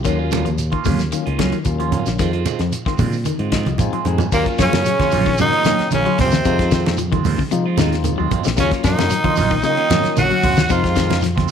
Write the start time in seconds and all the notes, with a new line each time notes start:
0.04 D#2 D#3 F#3 A#3 C#4 F4, kick, closed hi-hat, shekere
0.19 A#3 C#4 F4
0.31 F#3 A#3 C#4 F4, snare, closed hi-hat, high conga, shekere
0.45 D#2 F3, closed hi-hat, shekere
0.58 closed hi-hat, shekere
0.72 D#3 A#3 C#4 F4, kick, closed hi-hat
0.85 D#2 C#3 F#3 A#3 C#4 F4, kick, open hi-hat, high conga, low conga, shekere
0.99 snare, closed hi-hat, shekere
1.12 D#3 F#3 A#3 C#4 F4, closed hi-hat, shekere
1.26 C#2 A#3 C#4 F4, closed hi-hat
1.39 F#3 A#3 C#4 F4, kick, snare, closed hi-hat, high conga, shekere
1.52 D#3, closed hi-hat, shekere
1.65 D#2 F#3 A#3 C#4 F4, kick, closed hi-hat, shekere
1.80 F3 A#3 C#4 F4, closed hi-hat
1.92 F#3 A#3 C#4 F4, closed hi-hat, high conga, low conga, shekere
2.06 A#1 F3, snare, closed hi-hat, shekere
2.19 F2 D#3 G#3 C4 F4, kick, snare, closed hi-hat, shekere
2.33 G#3 C4 F4, closed hi-hat
2.45 D#3 G#3 C4 F4, muted clean electric guitar stroke, closed hi-hat, high conga, shekere
2.59 F2 F3, snare, closed hi-hat, shekere
2.72 closed hi-hat, shekere
2.86 D#3 G#3 C4 F4, muted fingered electric bass stroke, kick, snare
2.98 A#2 C#3 D#3 G#3 C4 F4, kick, open hi-hat, high conga, low conga, shekere
3.13 shekere
3.25 D#3, closed hi-hat, high conga, shekere
3.39 G#2 G#3 C4 F4, closed hi-hat
3.52 D#3 F3 G#3 C4 F4 D#5, kick, snare, closed hi-hat, high conga, shekere
3.66 C2 F3, closed hi-hat, high conga, shekere
3.78 G#3 C4 D#4 F4 G#5, kick, closed hi-hat, low conga, shekere
3.92 F3 G#3 C4 F4, muted fingered electric bass stroke, closed hi-hat
4.05 F2 D#3 G#3 C4 D#4 G#4 G#5, muted clean electric guitar stroke, closed hi-hat, low conga, shekere
4.18 F3, closed hi-hat, low conga, shekere
4.32 D#2 A#2 F#3 A#3 C#4 F4 A#4, muted clean electric guitar stroke, kick, crash, high conga, shekere
4.46 A#3 C#4 F4, kick, closed hi-hat
4.58 F#2 C#3 F3 F#3 A#3 C#4 F4 C#5, kick, snare, closed hi-hat, shekere
4.72 F#2, snare, high conga, shekere
4.85 F#3, closed hi-hat, high conga, shekere
5.00 F3 A#3 C#4 F4, kick, snare, closed hi-hat, high conga
5.11 A#1 F#3 A#3 C#4 F4, open hi-hat, low conga, shekere
5.25 D#3, kick, shekere
5.38 C#3 D#3 F#3 A#3 C#4 D#4 F#4 D#5, closed hi-hat, high conga, low conga, shekere
5.52 A#3 C#4 F4, closed hi-hat
5.64 D#3 F#3 A#3 C#4 D#4, muted clean electric guitar stroke, snare, closed hi-hat, high conga, shekere
5.78 muted fingered electric bass stroke, snare, closed hi-hat, shekere
5.91 A#1 C#3 D#3 C#4 C#5, closed hi-hat, high conga, shekere
6.06 F#3 A#3 C#4 F4, closed hi-hat
6.18 C#2 C3 F#3 A#3 C4 C#4 F4, kick, snare, open hi-hat, low conga, shekere
6.22 C5
6.32 D#2 F3, snare, closed hi-hat, high conga, shekere
6.44 F2 C3 D#3 G#3 C4 D#4 F4, kick, closed hi-hat, high conga, shekere
6.59 G#3 C4 F4, kick, snare, closed hi-hat
6.71 D#3 G#3 C4 F4, kick, snare, closed hi-hat, shekere
6.85 snare, closed hi-hat, high conga, shekere
6.97 F3, closed hi-hat, high conga, shekere
7.12 D#3 G#3 C4 F4, kick, closed hi-hat, high conga
7.24 D#2 D#3 G#3 C4 F4, open hi-hat, high conga, low conga, shekere
7.38 C#3, kick, shekere
7.51 C3 F3 G#3 C4 D#4 F4, closed hi-hat, high conga, shekere
7.66 G#3 C4 F4
7.77 D#2 D#3 G#3 C4 D#4 F4, snare, closed hi-hat, high conga, low conga, shekere
7.92 snare, closed hi-hat, shekere
8.04 D#3, closed hi-hat, high conga, shekere
8.18 D#2 F#3 G#3 C4 F4
8.31 D#3 G#3 C4 F4, kick, closed hi-hat, low conga, shekere
8.44 A#1 F3, snare, closed hi-hat, shekere
8.56 D#2 C#3 F#3 A#3 C#4 F4, kick, snare, closed hi-hat, shekere
8.61 C#5
8.71 A#3 C#4, muted clean electric guitar stroke, kick, snare, closed hi-hat
8.82 F#2 D#3 F3 F#3 A#3 C#4 D#4 F4, kick, snare, closed hi-hat, shekere
8.87 D#5
8.98 F#2, snare, high conga, shekere
9.10 F#3, closed hi-hat, high conga, shekere
9.24 F3 A#3 C#4 F4, kick, closed hi-hat, high conga
9.36 A#1 F#3 A#3 C#4 F4, open hi-hat, high conga, low conga, shekere
9.50 D#3, kick, shekere
9.62 C#3 D#3 F#3 A#3 C#4 D#4 F4, closed hi-hat, high conga, shekere
9.66 D#5
9.77 A#3 C#4 F4, closed hi-hat
9.90 D#3 F#3 A#3 C#4 F4, muted clean electric guitar stroke, snare, closed hi-hat, high conga, low conga, shekere
10.04 muted fingered electric bass stroke, snare, closed hi-hat, shekere
10.17 A#1 D#3 F#3 F#4 F#5, closed hi-hat, high conga, shekere
10.31 F#3 A#3 C#4, closed hi-hat
10.43 C#2 F#3 A#3 C#4 F4, kick, open hi-hat, low conga, shekere
10.56 D#2 F3, snare, closed hi-hat, high conga, shekere
10.69 F2 C3 D#3 F3 G#3 C4 D#4 F4 F5, kick, closed hi-hat, high conga, shekere
10.83 G#3 C4, muted clean electric guitar stroke, kick, snare, closed hi-hat
10.96 D#3 G#3 C4 F4, kick, snare, closed hi-hat, shekere
11.09 snare, closed hi-hat, high conga, shekere
11.21 F3, snare, closed hi-hat, high conga, shekere
11.36 G#3 C4 F4, kick, snare, closed hi-hat, high conga